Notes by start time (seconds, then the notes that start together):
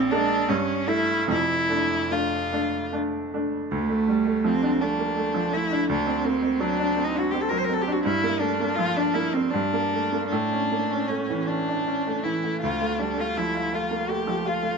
Already playing: A#1 C4
0.11 G#3 A#3 D4
0.49 G2 C#4
0.88 A3 E4
1.27 F1 F2 E4
1.69 A3 D4
2.11 A3 D4 F4
2.53 A3 D4
2.93 A3 D4
3.34 A3 D4
3.71 D2 A3
3.89 A3
4.08 G3
4.26 A3
4.44 F3 C4
4.62 D4
4.81 A3 D4
4.99 A#3
5.17 A3
5.34 F3
5.53 A3 E4
5.71 D4
5.89 D2 D4
6.07 C4
6.24 A#3 C4
6.42 C4
6.60 F#3 D4
6.79 D4
6.97 C4
7.04 D#4
7.14 D4
7.19 F#4
7.31 C4 G4
7.41 A4
7.49 F#3 A#4
7.58 C5
7.64 A#4
7.69 C4 A4
7.82 G4
7.87 D4
7.93 F#4
8.04 G2 E4
8.23 A#3
8.39 A3 D4
8.60 A#3
8.75 F3 F4
8.96 D4
9.14 A#3 E4
9.33 C4
9.51 G2 D4
9.73 A#3
9.93 A3
10.13 A#3
10.28 D4
10.32 A2
10.52 C#4
10.72 A#3
10.90 C#4
11.08 A3 C#4
11.30 E3
11.46 C#4 D4
11.68 D4
11.87 C#4
12.07 A3
12.23 E3 E4
12.44 A3
12.62 D2 F4
12.81 A3
12.99 G3 D4
13.18 A3 F4
13.37 F3 E4
13.55 F4
13.73 A3 F4
13.91 A#3
14.09 A3 G4
14.27 F3
14.45 F4
14.63 A3